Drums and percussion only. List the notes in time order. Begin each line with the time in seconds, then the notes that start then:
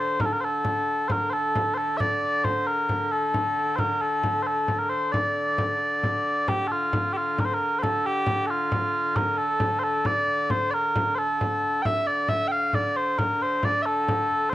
0.20 frame drum
0.65 frame drum
1.10 frame drum
1.33 frame drum
1.55 frame drum
2.00 frame drum
2.23 frame drum
2.44 frame drum
2.89 frame drum
3.34 frame drum
3.57 frame drum
3.78 frame drum
4.02 frame drum
4.23 frame drum
4.68 frame drum
4.93 frame drum
5.14 frame drum
5.58 frame drum
6.03 frame drum
6.25 frame drum
6.48 frame drum
6.71 frame drum
6.93 frame drum
7.38 frame drum
7.61 frame drum
7.83 frame drum
8.06 frame drum
8.27 frame drum
8.72 frame drum
9.16 frame drum
9.38 frame drum
9.60 frame drum
10.05 frame drum
10.27 frame drum
10.50 frame drum
10.96 frame drum
11.41 frame drum
11.63 frame drum
11.85 frame drum
12.08 frame drum
12.28 frame drum
12.73 frame drum
12.97 frame drum
13.19 frame drum
13.41 frame drum
13.63 frame drum
14.08 frame drum
14.32 frame drum